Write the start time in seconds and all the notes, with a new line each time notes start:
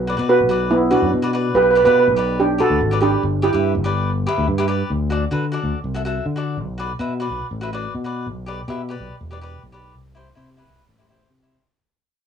Already playing: B1
0.07 F#4 B4 D5
0.17 B2 F#4 B4 D5
0.29 F#4 B4
0.40 B1
0.49 F#4 B4 D5
0.71 B3 E4
0.91 D4 F#4 B4 D5
1.02 F#2
1.13 B2
1.22 F#4 B4 D5
1.33 F#4 B4 D5
1.54 B1 G4 B4
1.63 B4
1.71 B4
1.75 G4 B4 D5
1.85 B2 G4 B4 D5
1.92 B4
2.00 B4
2.07 B1
2.16 G4 B4 D5
2.40 D4 G4
2.58 F#4 G4 A4 B4 D5
2.70 D2
2.81 G#1
2.91 G4 B4 D5
3.00 D4 G4 B4 D5
3.23 G1
3.42 E4 G4 B4 D5
3.52 G2 G4 B4 E5
3.75 G1
3.84 G4 B4 D5
4.26 G4 B4 E5
4.38 D2
4.48 G2
4.58 G4 B4 E5
4.68 G4 B4 D5
4.90 D2
5.10 F#4 A4 D5
5.31 D3 F#4 A4 B4
5.52 F#4 A4 D5
5.63 D2
5.84 C2
5.94 F#4 A4 E5
6.05 F#4 A4 E5
6.26 D3
6.36 F#4 A4 D5
6.57 B1
6.78 F#4 B4 D5
6.99 B2 F#4 B4 E5
7.20 F#4 B4 D5
7.30 B1
7.51 A1
7.61 F#4 B4 E5
7.73 F#4 B4 D5
7.94 B2
8.04 F#4 B4 D5
8.26 B1
8.46 G4 B4 D5
8.68 B2 G4 B4 E5
8.89 G4 B4 D5
9.00 B1
9.21 E1
9.31 G4 B4 D5
9.41 G4 B4 D5
9.63 B1
9.72 G4 B4 D5
9.95 C2
10.15 E4 G4 C5
10.35 C3 E4 G4 C5
10.57 E4 G4 B4
10.68 C2
10.89 A1
10.99 E4 G4 C5
11.09 E4 G4 C5
11.30 C3
11.43 E4 G4 C5